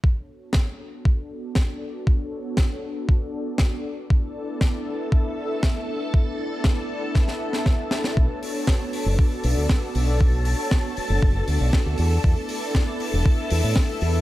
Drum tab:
HH |----------------|----------------|----------------|----------------|
SD |----o-------o---|----o-------o---|----o-------o---|----o---oo-oo-oo|
BD |o---o---o---o---|o---o---o---o---|o---o---o---o---|o---o---o---o---|

HH |--o---o---o---o-|--o---o---o---o-|--o---o---o---o-|
SD |----o-------o---|----o-------o---|----o-------o---|
BD |o---o---o---o---|o---o---o---o---|o---o---o---o---|